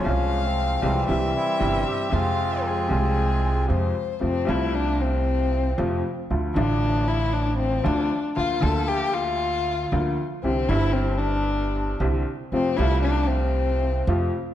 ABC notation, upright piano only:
X:1
M:4/4
L:1/8
Q:1/4=116
K:Fm
V:1 name="Upright piano" clef=bass
[C,,F,A,F]3 [C,,C,F,A,F] [C,,C,=E,G,=E] z [G,,,G,,C,E,G,E] z | [F,,C,F,A,F]3 [C,,C,F,A,F]3 [F,,C,F,A,F] z | [K:F] [F,,C,F,A,F] [C,,C,F,A,F]4- [C,,C,F,A,F] [F,,C,F,A,F] z | [D,,D,F,A,F] [A,,,A,,D,F,A,F]4- [A,,,A,,D,F,A,F] [D,,D,F,A,F] z |
[D,,D,F,B,F] [D,,D,F,B,F]4- [D,,D,F,B,F] [D,,D,F,B,F] z | [C,,C,D,G,CE] [G,,,G,,D,G,CE]4- [G,,,G,,D,G,CE] [C,,C,D,G,CE] z | [F,,C,F,A,F] [C,,C,F,A,F]4- [C,,C,F,A,F] [F,,C,F,A,F] z |]